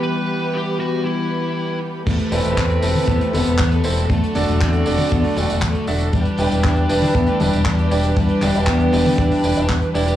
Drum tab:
CC |----------------|x---------------|----------------|----------------|
HH |----------------|xxoxxxooxxoxxxox|xxoxxxooxooxxxox|xxoxxxooxxoxxxox|
TB |----------------|x-xxx-xxx-xxx-xx|x-xxx-xxx-xx--xx|x-xxx-xxx-xxx-xx|
CP |----------------|----x-------x---|----x-------x---|----x-------x---|
T1 |----------------|-------o--o-----|--o----o--------|-------o--o-----|
BD |----------------|o---o---o---o---|o---o---o---o---|o---o---o---o---|

CC |----------------|
HH |xxoxxxoo-ooxxxox|
TB |x-xxx-xxx-xxx-xx|
CP |--x-x-------x---|
T1 |--o----o--------|
BD |o---o---o---o---|